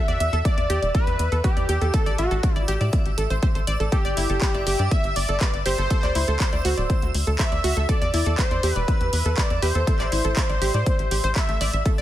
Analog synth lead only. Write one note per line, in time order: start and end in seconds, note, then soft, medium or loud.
0.00 0.45 E5 loud
0.45 0.91 D5 loud
0.95 1.41 B4 loud
1.44 1.95 G4 medium
1.94 2.18 A4 medium
2.19 2.65 F#4 medium
3.92 4.93 G4 loud
4.91 5.16 E5 loud
5.16 5.62 D5 loud
5.66 7.10 C5 loud
7.39 7.91 E5 loud
7.89 8.38 D5 loud
8.39 8.73 C5 loud
8.73 8.88 B4 loud
8.88 9.39 B4 medium
9.38 9.62 D5 loud
9.62 11.32 C5 loud
11.36 11.82 E5 medium